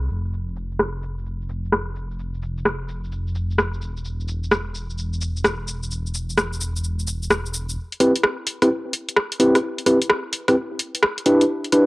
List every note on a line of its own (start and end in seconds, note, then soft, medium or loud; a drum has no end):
0.02 cabasa soft
0.10 3.80 F1 medium
0.10 cabasa medium
0.25 cabasa soft
0.33 cabasa soft
0.48 cabasa soft
0.56 cabasa medium
0.72 cabasa soft
0.79 cross-stick loud
0.79 cabasa soft
1.03 cabasa medium
1.18 cabasa soft
1.26 cabasa soft
1.41 cabasa soft
1.49 cabasa medium
1.65 cabasa soft
1.72 cross-stick loud
1.72 cabasa soft
1.96 cabasa medium
2.11 cabasa soft
2.19 cabasa soft
2.34 cabasa soft
2.42 cabasa medium
2.57 cabasa soft
2.65 cross-stick loud
2.65 cabasa soft
2.89 cabasa medium
3.04 cabasa soft
3.12 cabasa soft
3.27 cabasa soft
3.35 cabasa medium
3.50 cabasa soft
3.58 cross-stick loud
3.58 cabasa soft
3.74 cabasa soft
3.82 7.75 E1 medium
3.82 cabasa medium
3.97 cabasa soft
4.05 cabasa soft
4.20 cabasa soft
4.28 cabasa medium
4.44 cabasa soft
4.51 cross-stick loud
4.51 cabasa soft
4.75 cabasa medium
4.90 cabasa soft
4.98 cabasa soft
5.13 cabasa soft
5.21 cabasa medium
5.37 cabasa soft
5.44 cross-stick loud
5.44 cabasa soft
5.68 cabasa medium
5.83 cabasa soft
5.91 cabasa soft
6.06 cabasa soft
6.14 cabasa medium
6.30 cabasa soft
6.38 cross-stick loud
6.38 cabasa soft
6.53 cabasa soft
6.61 cabasa medium
6.76 cabasa soft
6.84 cabasa soft
6.99 cabasa soft
7.07 cabasa medium
7.23 cabasa soft
7.30 cross-stick loud
7.30 cabasa soft
7.46 cabasa soft
7.54 cabasa medium
7.69 cabasa soft
7.92 closed hi-hat soft
8.00 8.12 C4 medium
8.00 8.12 E4 medium
8.00 8.12 G4 medium
8.00 8.12 B4 medium
8.00 cross-stick soft
8.00 open hi-hat loud
8.16 closed hi-hat medium
8.23 cross-stick loud
8.47 open hi-hat loud
8.62 8.68 C4 medium
8.62 8.68 E4 medium
8.62 8.68 G4 medium
8.62 8.68 B4 medium
8.62 cross-stick medium
8.62 closed hi-hat medium
8.93 open hi-hat loud
9.09 closed hi-hat medium
9.16 cross-stick loud
9.32 closed hi-hat soft
9.40 9.57 C4 medium
9.40 9.57 E4 medium
9.40 9.57 G4 medium
9.40 9.57 B4 medium
9.40 open hi-hat loud
9.55 cross-stick medium
9.55 closed hi-hat medium
9.78 closed hi-hat soft
9.86 9.98 C4 medium
9.86 9.98 E4 medium
9.86 9.98 G4 medium
9.86 9.98 B4 medium
9.86 cross-stick soft
9.86 open hi-hat loud
10.02 closed hi-hat medium
10.10 cross-stick loud
10.33 open hi-hat loud
10.48 10.54 C4 medium
10.48 10.54 E4 medium
10.48 10.54 G4 medium
10.48 10.54 B4 medium
10.48 cross-stick medium
10.48 open hi-hat medium
10.79 open hi-hat loud
10.95 closed hi-hat medium
11.03 cross-stick loud
11.18 closed hi-hat soft
11.26 11.43 D4 medium
11.26 11.43 E4 medium
11.26 11.43 G4 medium
11.26 11.43 B4 loud
11.26 open hi-hat loud
11.41 closed hi-hat medium
11.64 closed hi-hat soft
11.72 11.84 D4 medium
11.72 11.84 E4 medium
11.72 11.84 G4 medium
11.72 11.84 B4 medium
11.72 cross-stick soft
11.72 open hi-hat loud